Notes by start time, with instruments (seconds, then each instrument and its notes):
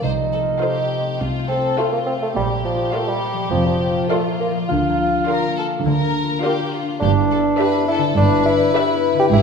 Already playing: harp F3 F4 F5
0.03 double bass section C2, harp C3, cello section C3, bassoon D#4, violin section C5
0.23 harp A3
0.33 violin section A4
0.42 harp F4
0.58 french horn section F4 A4, viola section F4 A4, violin section C5 F5
0.62 violin section G4, harp C5
0.81 harp A3
1.00 harp C4
1.19 double bass section C2, cello section C3, harp A3, violin section F4
1.39 harp C4
1.48 bassoon C4, violin section A4
1.59 harp F4
1.77 bassoon A3, french horn section F4 A4, viola section F4 A4, violin section F4 C5 F5, harp C5
1.92 bassoon A#3
1.98 harp A3
2.06 bassoon C4
2.18 harp C4
2.22 bassoon A3
2.36 double bass section A#1, cello section A#2, harp A#2, bassoon G3, violin section G4
2.56 harp A#3
2.65 bassoon F3
2.75 harp F4
2.93 bassoon A3, viola section F4 A#4, french horn section F4 A#4, violin section D5 F5, harp D5
3.08 bassoon G3
3.14 harp A#3
3.33 harp F3
3.51 double bass section F1, cello section F2, bassoon F3, harp A#3
3.66 bassoon F3
3.72 harp F3
3.91 harp F4
4.09 bassoon A3, viola section F4 A#4, violin section F4 D5 F5, french horn section F4 A#4, harp D5
4.31 harp A#3
4.40 bassoon A#3
4.51 harp F3
4.69 double bass section D2, cello section D3, harp D3, bassoon F4
4.90 harp A#3
5.09 harp F4
5.28 viola section F4 A#4, french horn section F4 A#4, violin section A#4 D5 F5, harp D5
5.47 harp A#3
5.57 violin section A4
5.67 harp D4
5.85 double bass section D2, cello section D3, harp D3, violin section A#4
6.05 harp A#3
6.25 harp F4
6.42 viola section F4 A#4, french horn section F4 A#4, violin section G4 D5 F5, harp D5
6.63 harp A#3
6.73 violin section F4
6.83 harp D4
7.00 double bass section G1, cello section G2, harp G2, bassoon D4, french horn section E4 B4, violin section G4
7.21 harp B3
7.31 violin section A4
7.39 harp E4
7.59 viola section G4 B4, violin section B4 D5 E5, harp E5
7.79 harp B3
7.88 bassoon E4, violin section A4
7.98 harp D3
8.17 double bass section G1, cello section G2, harp G2, bassoon D4, violin section B4
8.36 harp B3
8.46 bassoon E4
8.55 harp E4
8.75 bassoon E4, viola section G4 B4, violin section D5 E5, harp E5
8.94 harp B3
9.14 harp D3
9.20 bassoon G4
9.32 double bass section G#1, cello section G#2, harp G#2, bassoon E4, violin section G#4